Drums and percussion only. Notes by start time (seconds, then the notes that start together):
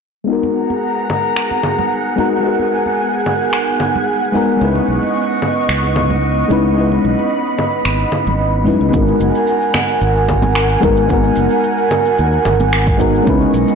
0.43 high conga
0.70 high conga
1.10 low conga
1.36 finger snap
1.51 high conga
1.63 low conga
1.79 low conga
2.18 high conga, low conga
2.59 high conga
2.86 high conga
3.26 low conga
3.53 finger snap
3.80 low conga
3.96 low conga
4.35 low conga
4.75 high conga
5.03 high conga
5.42 low conga
5.69 finger snap
5.83 high conga
5.96 low conga
6.10 low conga
6.51 high conga, low conga
6.92 high conga
7.19 high conga
7.58 low conga
7.85 finger snap
8.12 low conga
8.27 low conga
8.67 low conga
8.93 kick, high conga, shaker
9.08 shaker
9.20 shaker
9.35 shaker
9.47 shaker
9.62 shaker
9.74 finger snap, high conga, low conga, shaker
9.89 shaker
10.01 shaker
10.16 shaker
10.29 kick, low conga, shaker
10.42 high conga, low conga, shaker
10.55 finger snap, shaker
10.70 shaker
10.82 kick, low conga, shaker
10.97 shaker
11.09 kick, high conga, shaker
11.24 shaker
11.36 shaker
11.50 shaker
11.64 shaker
11.78 shaker
11.91 high conga, low conga, shaker
12.05 shaker
12.18 shaker
12.33 shaker
12.45 low conga, shaker
12.60 high conga, low conga, shaker
12.73 finger snap, shaker
12.87 kick, shaker
13.00 kick, low conga, shaker
13.14 shaker
13.27 kick, high conga, shaker
13.41 shaker
13.54 shaker
13.68 shaker